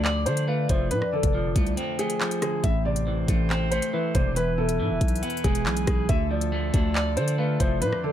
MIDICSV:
0, 0, Header, 1, 7, 480
1, 0, Start_track
1, 0, Tempo, 431655
1, 1012, Time_signature, 4, 2, 24, 8
1, 9032, End_track
2, 0, Start_track
2, 0, Title_t, "Soft synth lead"
2, 0, Program_c, 0, 80
2, 530, Note_on_c, 0, 77, 87
2, 759, Note_off_c, 0, 77, 0
2, 773, Note_on_c, 0, 76, 87
2, 1001, Note_off_c, 0, 76, 0
2, 1011, Note_on_c, 0, 74, 123
2, 1927, Note_off_c, 0, 74, 0
2, 4371, Note_on_c, 0, 76, 80
2, 4599, Note_off_c, 0, 76, 0
2, 4612, Note_on_c, 0, 74, 84
2, 4840, Note_off_c, 0, 74, 0
2, 4852, Note_on_c, 0, 76, 104
2, 6247, Note_off_c, 0, 76, 0
2, 8210, Note_on_c, 0, 77, 84
2, 8439, Note_off_c, 0, 77, 0
2, 8454, Note_on_c, 0, 76, 86
2, 8681, Note_off_c, 0, 76, 0
2, 8693, Note_on_c, 0, 74, 122
2, 9032, Note_off_c, 0, 74, 0
2, 9032, End_track
3, 0, Start_track
3, 0, Title_t, "Grand piano"
3, 0, Program_c, 1, 0
3, 287, Note_on_c, 1, 72, 83
3, 479, Note_off_c, 1, 72, 0
3, 530, Note_on_c, 1, 71, 74
3, 721, Note_off_c, 1, 71, 0
3, 774, Note_on_c, 1, 72, 75
3, 963, Note_off_c, 1, 72, 0
3, 1010, Note_on_c, 1, 71, 97
3, 1201, Note_off_c, 1, 71, 0
3, 1262, Note_on_c, 1, 69, 85
3, 2172, Note_off_c, 1, 69, 0
3, 2213, Note_on_c, 1, 68, 83
3, 2664, Note_off_c, 1, 68, 0
3, 2692, Note_on_c, 1, 68, 82
3, 2882, Note_off_c, 1, 68, 0
3, 2933, Note_on_c, 1, 76, 91
3, 3123, Note_off_c, 1, 76, 0
3, 3177, Note_on_c, 1, 74, 81
3, 3851, Note_off_c, 1, 74, 0
3, 4128, Note_on_c, 1, 72, 78
3, 4320, Note_off_c, 1, 72, 0
3, 4374, Note_on_c, 1, 71, 78
3, 4563, Note_off_c, 1, 71, 0
3, 4611, Note_on_c, 1, 72, 79
3, 4801, Note_off_c, 1, 72, 0
3, 4850, Note_on_c, 1, 71, 97
3, 5041, Note_off_c, 1, 71, 0
3, 5092, Note_on_c, 1, 69, 92
3, 6008, Note_off_c, 1, 69, 0
3, 6051, Note_on_c, 1, 68, 86
3, 6503, Note_off_c, 1, 68, 0
3, 6531, Note_on_c, 1, 68, 89
3, 6722, Note_off_c, 1, 68, 0
3, 6772, Note_on_c, 1, 76, 101
3, 6962, Note_off_c, 1, 76, 0
3, 7014, Note_on_c, 1, 74, 77
3, 7690, Note_off_c, 1, 74, 0
3, 7969, Note_on_c, 1, 72, 83
3, 8160, Note_off_c, 1, 72, 0
3, 8209, Note_on_c, 1, 71, 73
3, 8400, Note_off_c, 1, 71, 0
3, 8453, Note_on_c, 1, 72, 78
3, 8642, Note_off_c, 1, 72, 0
3, 8691, Note_on_c, 1, 71, 102
3, 8881, Note_off_c, 1, 71, 0
3, 8940, Note_on_c, 1, 69, 92
3, 9032, Note_off_c, 1, 69, 0
3, 9032, End_track
4, 0, Start_track
4, 0, Title_t, "Brass ensemble"
4, 0, Program_c, 2, 61
4, 2931, Note_on_c, 2, 69, 78
4, 2932, Note_on_c, 2, 52, 81
4, 2932, Note_on_c, 2, 60, 74
4, 2932, Note_on_c, 2, 72, 94
4, 4832, Note_off_c, 2, 69, 0
4, 4833, Note_off_c, 2, 60, 0
4, 4833, Note_off_c, 2, 72, 0
4, 4852, Note_on_c, 2, 59, 78
4, 4852, Note_on_c, 2, 71, 91
4, 4852, Note_on_c, 2, 80, 76
4, 6733, Note_off_c, 2, 52, 0
4, 6753, Note_off_c, 2, 59, 0
4, 6753, Note_off_c, 2, 71, 0
4, 6753, Note_off_c, 2, 80, 0
4, 6772, Note_on_c, 2, 50, 82
4, 6772, Note_on_c, 2, 57, 78
4, 6772, Note_on_c, 2, 65, 77
4, 6772, Note_on_c, 2, 69, 93
4, 8673, Note_off_c, 2, 50, 0
4, 8673, Note_off_c, 2, 69, 0
4, 8692, Note_on_c, 2, 50, 88
4, 8692, Note_on_c, 2, 72, 93
4, 9032, Note_off_c, 2, 50, 0
4, 9032, Note_off_c, 2, 57, 0
4, 9032, Note_off_c, 2, 65, 0
4, 9032, Note_off_c, 2, 72, 0
4, 9032, End_track
5, 0, Start_track
5, 0, Title_t, "Clean electric guitar"
5, 0, Program_c, 3, 27
5, 0, Note_on_c, 3, 50, 99
5, 0, Note_on_c, 3, 53, 84
5, 0, Note_on_c, 3, 57, 104
5, 0, Note_on_c, 3, 62, 90
5, 52, Note_on_c, 3, 74, 94
5, 280, Note_off_c, 3, 62, 0
5, 292, Note_off_c, 3, 50, 0
5, 293, Note_on_c, 3, 62, 88
5, 516, Note_off_c, 3, 57, 0
5, 530, Note_on_c, 3, 57, 95
5, 532, Note_off_c, 3, 53, 0
5, 771, Note_on_c, 3, 53, 80
5, 1008, Note_on_c, 3, 41, 98
5, 1011, Note_off_c, 3, 53, 0
5, 1011, Note_off_c, 3, 57, 0
5, 1012, Note_off_c, 3, 62, 0
5, 1012, Note_off_c, 3, 74, 0
5, 1251, Note_on_c, 3, 50, 83
5, 1493, Note_on_c, 3, 53, 93
5, 1732, Note_on_c, 3, 57, 97
5, 1970, Note_on_c, 3, 60, 101
5, 2198, Note_off_c, 3, 57, 0
5, 2210, Note_off_c, 3, 41, 0
5, 2212, Note_on_c, 3, 57, 88
5, 2442, Note_off_c, 3, 53, 0
5, 2451, Note_off_c, 3, 50, 0
5, 2455, Note_on_c, 3, 53, 91
5, 2691, Note_on_c, 3, 50, 80
5, 2931, Note_off_c, 3, 60, 0
5, 2932, Note_off_c, 3, 50, 0
5, 2932, Note_off_c, 3, 57, 0
5, 2932, Note_on_c, 3, 45, 98
5, 2933, Note_off_c, 3, 53, 0
5, 3171, Note_on_c, 3, 48, 80
5, 3411, Note_on_c, 3, 52, 92
5, 3654, Note_on_c, 3, 57, 86
5, 3894, Note_on_c, 3, 60, 95
5, 4121, Note_off_c, 3, 57, 0
5, 4132, Note_off_c, 3, 45, 0
5, 4135, Note_on_c, 3, 57, 89
5, 4361, Note_off_c, 3, 52, 0
5, 4371, Note_off_c, 3, 48, 0
5, 4374, Note_on_c, 3, 52, 94
5, 4611, Note_on_c, 3, 48, 78
5, 4850, Note_on_c, 3, 40, 100
5, 4852, Note_off_c, 3, 48, 0
5, 4853, Note_off_c, 3, 52, 0
5, 4853, Note_off_c, 3, 57, 0
5, 4853, Note_off_c, 3, 60, 0
5, 5091, Note_on_c, 3, 47, 80
5, 5333, Note_on_c, 3, 52, 89
5, 5811, Note_on_c, 3, 59, 102
5, 6051, Note_off_c, 3, 40, 0
5, 6051, Note_on_c, 3, 56, 86
5, 6278, Note_off_c, 3, 52, 0
5, 6292, Note_off_c, 3, 47, 0
5, 6292, Note_on_c, 3, 52, 92
5, 6533, Note_on_c, 3, 47, 77
5, 6767, Note_off_c, 3, 47, 0
5, 6772, Note_off_c, 3, 52, 0
5, 6772, Note_off_c, 3, 56, 0
5, 6772, Note_off_c, 3, 59, 0
5, 6772, Note_on_c, 3, 50, 101
5, 7012, Note_on_c, 3, 53, 80
5, 7251, Note_on_c, 3, 57, 99
5, 7490, Note_on_c, 3, 62, 89
5, 7732, Note_on_c, 3, 74, 92
5, 7960, Note_off_c, 3, 62, 0
5, 7972, Note_off_c, 3, 50, 0
5, 7973, Note_on_c, 3, 62, 90
5, 8197, Note_off_c, 3, 57, 0
5, 8210, Note_on_c, 3, 57, 99
5, 8212, Note_off_c, 3, 53, 0
5, 8452, Note_on_c, 3, 53, 80
5, 8690, Note_on_c, 3, 41, 96
5, 8691, Note_off_c, 3, 57, 0
5, 8692, Note_off_c, 3, 53, 0
5, 8692, Note_off_c, 3, 62, 0
5, 8692, Note_off_c, 3, 74, 0
5, 8933, Note_on_c, 3, 50, 83
5, 9032, Note_off_c, 3, 41, 0
5, 9032, Note_off_c, 3, 50, 0
5, 9032, End_track
6, 0, Start_track
6, 0, Title_t, "808-style bass"
6, 0, Program_c, 4, 38
6, 0, Note_on_c, 4, 38, 108
6, 292, Note_on_c, 4, 50, 103
6, 308, Note_off_c, 4, 38, 0
6, 748, Note_off_c, 4, 50, 0
6, 771, Note_on_c, 4, 29, 107
6, 1011, Note_on_c, 4, 45, 99
6, 1028, Note_off_c, 4, 29, 0
6, 1126, Note_off_c, 4, 45, 0
6, 1371, Note_on_c, 4, 29, 99
6, 1717, Note_off_c, 4, 29, 0
6, 1731, Note_on_c, 4, 36, 108
6, 1962, Note_off_c, 4, 36, 0
6, 2932, Note_on_c, 4, 33, 116
6, 3623, Note_off_c, 4, 33, 0
6, 3651, Note_on_c, 4, 33, 107
6, 4228, Note_off_c, 4, 33, 0
6, 4612, Note_on_c, 4, 28, 104
6, 5332, Note_on_c, 4, 44, 102
6, 5349, Note_off_c, 4, 28, 0
6, 5452, Note_on_c, 4, 28, 96
6, 5469, Note_off_c, 4, 44, 0
6, 5566, Note_off_c, 4, 28, 0
6, 5571, Note_on_c, 4, 35, 108
6, 5802, Note_off_c, 4, 35, 0
6, 6052, Note_on_c, 4, 28, 111
6, 6293, Note_on_c, 4, 35, 98
6, 6309, Note_off_c, 4, 28, 0
6, 6520, Note_off_c, 4, 35, 0
6, 6532, Note_on_c, 4, 35, 101
6, 6762, Note_off_c, 4, 35, 0
6, 6772, Note_on_c, 4, 38, 115
6, 7463, Note_off_c, 4, 38, 0
6, 7492, Note_on_c, 4, 38, 108
6, 7972, Note_on_c, 4, 50, 104
6, 7989, Note_off_c, 4, 38, 0
6, 8428, Note_off_c, 4, 50, 0
6, 8452, Note_on_c, 4, 29, 104
6, 8692, Note_on_c, 4, 45, 97
6, 8709, Note_off_c, 4, 29, 0
6, 8806, Note_off_c, 4, 45, 0
6, 9032, End_track
7, 0, Start_track
7, 0, Title_t, "Drums"
7, 51, Note_on_c, 9, 39, 116
7, 162, Note_off_c, 9, 39, 0
7, 292, Note_on_c, 9, 42, 78
7, 403, Note_off_c, 9, 42, 0
7, 411, Note_on_c, 9, 42, 87
7, 522, Note_off_c, 9, 42, 0
7, 771, Note_on_c, 9, 42, 73
7, 772, Note_on_c, 9, 36, 104
7, 882, Note_off_c, 9, 42, 0
7, 883, Note_off_c, 9, 36, 0
7, 1011, Note_on_c, 9, 42, 90
7, 1122, Note_off_c, 9, 42, 0
7, 1131, Note_on_c, 9, 37, 64
7, 1243, Note_off_c, 9, 37, 0
7, 1371, Note_on_c, 9, 36, 102
7, 1371, Note_on_c, 9, 42, 84
7, 1482, Note_off_c, 9, 42, 0
7, 1483, Note_off_c, 9, 36, 0
7, 1731, Note_on_c, 9, 36, 88
7, 1732, Note_on_c, 9, 42, 72
7, 1842, Note_off_c, 9, 36, 0
7, 1843, Note_off_c, 9, 42, 0
7, 1852, Note_on_c, 9, 42, 43
7, 1963, Note_off_c, 9, 42, 0
7, 1972, Note_on_c, 9, 42, 69
7, 2083, Note_off_c, 9, 42, 0
7, 2212, Note_on_c, 9, 42, 72
7, 2323, Note_off_c, 9, 42, 0
7, 2332, Note_on_c, 9, 42, 88
7, 2443, Note_off_c, 9, 42, 0
7, 2453, Note_on_c, 9, 39, 110
7, 2564, Note_off_c, 9, 39, 0
7, 2572, Note_on_c, 9, 42, 78
7, 2683, Note_off_c, 9, 42, 0
7, 2692, Note_on_c, 9, 37, 90
7, 2692, Note_on_c, 9, 42, 71
7, 2803, Note_off_c, 9, 37, 0
7, 2803, Note_off_c, 9, 42, 0
7, 2932, Note_on_c, 9, 36, 118
7, 2932, Note_on_c, 9, 42, 93
7, 3043, Note_off_c, 9, 36, 0
7, 3043, Note_off_c, 9, 42, 0
7, 3292, Note_on_c, 9, 42, 82
7, 3403, Note_off_c, 9, 42, 0
7, 3651, Note_on_c, 9, 36, 91
7, 3652, Note_on_c, 9, 42, 73
7, 3762, Note_off_c, 9, 36, 0
7, 3763, Note_off_c, 9, 42, 0
7, 3892, Note_on_c, 9, 39, 116
7, 4003, Note_off_c, 9, 39, 0
7, 4132, Note_on_c, 9, 42, 74
7, 4243, Note_off_c, 9, 42, 0
7, 4252, Note_on_c, 9, 42, 86
7, 4363, Note_off_c, 9, 42, 0
7, 4612, Note_on_c, 9, 36, 102
7, 4612, Note_on_c, 9, 42, 71
7, 4723, Note_off_c, 9, 36, 0
7, 4723, Note_off_c, 9, 42, 0
7, 4852, Note_on_c, 9, 42, 93
7, 4963, Note_off_c, 9, 42, 0
7, 5212, Note_on_c, 9, 42, 84
7, 5323, Note_off_c, 9, 42, 0
7, 5571, Note_on_c, 9, 36, 87
7, 5572, Note_on_c, 9, 42, 60
7, 5652, Note_off_c, 9, 42, 0
7, 5652, Note_on_c, 9, 42, 62
7, 5683, Note_off_c, 9, 36, 0
7, 5733, Note_off_c, 9, 42, 0
7, 5733, Note_on_c, 9, 42, 62
7, 5812, Note_off_c, 9, 42, 0
7, 5812, Note_on_c, 9, 42, 60
7, 5892, Note_off_c, 9, 42, 0
7, 5892, Note_on_c, 9, 42, 61
7, 5972, Note_off_c, 9, 42, 0
7, 5972, Note_on_c, 9, 42, 59
7, 6053, Note_off_c, 9, 42, 0
7, 6053, Note_on_c, 9, 36, 98
7, 6053, Note_on_c, 9, 42, 69
7, 6164, Note_off_c, 9, 36, 0
7, 6164, Note_off_c, 9, 42, 0
7, 6172, Note_on_c, 9, 42, 87
7, 6283, Note_off_c, 9, 42, 0
7, 6292, Note_on_c, 9, 39, 114
7, 6403, Note_off_c, 9, 39, 0
7, 6412, Note_on_c, 9, 42, 79
7, 6523, Note_off_c, 9, 42, 0
7, 6532, Note_on_c, 9, 36, 102
7, 6532, Note_on_c, 9, 37, 88
7, 6532, Note_on_c, 9, 42, 70
7, 6643, Note_off_c, 9, 36, 0
7, 6643, Note_off_c, 9, 37, 0
7, 6643, Note_off_c, 9, 42, 0
7, 6771, Note_on_c, 9, 42, 91
7, 6772, Note_on_c, 9, 36, 120
7, 6883, Note_off_c, 9, 36, 0
7, 6883, Note_off_c, 9, 42, 0
7, 7132, Note_on_c, 9, 42, 83
7, 7243, Note_off_c, 9, 42, 0
7, 7492, Note_on_c, 9, 36, 90
7, 7492, Note_on_c, 9, 42, 70
7, 7603, Note_off_c, 9, 36, 0
7, 7603, Note_off_c, 9, 42, 0
7, 7732, Note_on_c, 9, 39, 119
7, 7843, Note_off_c, 9, 39, 0
7, 7972, Note_on_c, 9, 42, 74
7, 8083, Note_off_c, 9, 42, 0
7, 8092, Note_on_c, 9, 42, 83
7, 8203, Note_off_c, 9, 42, 0
7, 8452, Note_on_c, 9, 42, 73
7, 8453, Note_on_c, 9, 36, 100
7, 8563, Note_off_c, 9, 42, 0
7, 8564, Note_off_c, 9, 36, 0
7, 8693, Note_on_c, 9, 42, 93
7, 8804, Note_off_c, 9, 42, 0
7, 8812, Note_on_c, 9, 37, 65
7, 8924, Note_off_c, 9, 37, 0
7, 9032, End_track
0, 0, End_of_file